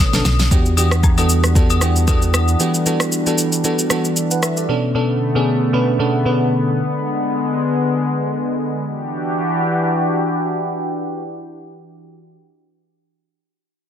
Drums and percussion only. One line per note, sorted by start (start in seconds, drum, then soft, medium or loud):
0.13 snare medium
0.13 shaker medium
0.25 snare medium
0.25 high agogo medium
0.25 shaker loud
0.39 snare medium
0.39 shaker soft
0.51 kick loud
0.51 shaker medium
0.66 shaker soft
0.77 high agogo medium
0.77 shaker medium
0.91 cross-stick loud
0.91 shaker soft
1.03 kick medium
1.03 low woodblock medium
1.03 shaker medium
1.18 high agogo medium
1.18 shaker soft
1.29 shaker medium
1.44 cross-stick medium
1.44 shaker medium
1.55 kick loud
1.55 shaker medium
1.70 high agogo medium
1.70 shaker medium
1.81 cross-stick medium
1.81 shaker medium
1.96 shaker medium
2.08 kick medium
2.08 high agogo medium
2.08 shaker medium
2.22 shaker medium
2.34 cross-stick medium
2.34 high agogo medium
2.34 shaker medium
2.48 shaker soft
2.60 shaker medium
2.74 shaker soft
2.86 shaker medium
3.00 cross-stick loud
3.00 shaker medium
3.12 shaker medium
3.27 shaker soft
3.38 shaker medium
3.52 shaker medium
3.64 shaker medium
3.79 shaker medium
3.90 cross-stick medium
3.90 shaker loud
4.05 shaker medium
4.16 shaker medium
4.31 shaker medium
4.43 cross-stick medium
4.43 shaker medium
4.57 shaker soft